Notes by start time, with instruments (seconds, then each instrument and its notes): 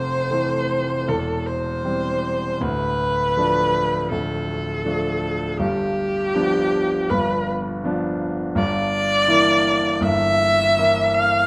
Already playing: grand piano F1 F2, viola C5
0.31 grand piano E3 A3 C4
1.07 grand piano E1 E2, viola A4
1.46 viola C5
1.84 grand piano E3 G3 C4
2.61 grand piano D1 D2, viola B4
3.37 grand piano F3 A3 D4
4.11 grand piano D1 D2, viola A4
4.85 grand piano F3 A3 D4
5.59 grand piano G1 G2, viola G4
6.35 grand piano F3 B3 D4
7.10 grand piano G1 G2, viola B4
7.84 grand piano F3 B3 D4
8.55 grand piano G1 G2, viola D5
9.28 grand piano E3 A#3 E4
10.01 grand piano G1 G2, viola E5
10.78 grand piano E3 A#3 E4
11.14 viola F5